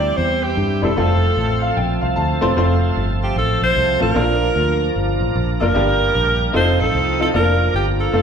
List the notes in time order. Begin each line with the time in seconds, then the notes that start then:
Already playing: D2 E3 G3 C4 E4 G4 D5
0.17 E2 C5
0.44 G4
0.57 G2
0.82 E1 G3 C4 E4 A4
0.97 F1 F3 A3 C4 F4 G#4 A4
1.03 A4
1.37 A1
1.62 F5
1.77 A#1 G5
2.01 C2 F5
2.16 D2 A5
2.41 E1 A3 C4 F4 C5 C6
2.56 F1 A3 C4 F4 C5
2.97 G1
3.23 G4
3.36 A1 A4
3.62 A#1 C5
3.76 C2
4.00 A1 A3 C4 F4 A4 A#4
4.15 A#1 A#2 F3 A#3 C4 D4 F4 A4 A#4
4.21 D4 A#4
4.56 D2
4.96 G1
5.21 A1
5.35 A#1
5.60 F#1 A#3 D4 F4 A#4
5.74 G1 G2 G3 A#3 D4 G4 A4 A#4
5.78 A#4
6.15 A#1
6.53 F1 F3 A3 C4 D#4 F4 A4 C5
6.80 A1 A4
6.95 C2
7.20 C4 D#4 F4 A4
7.34 F1 F3 A#3 D4 F4 A4 A#4
7.40 A#4
7.74 G1 G4
8.01 A4
8.12 F1 F3 A3 C4 F4 A4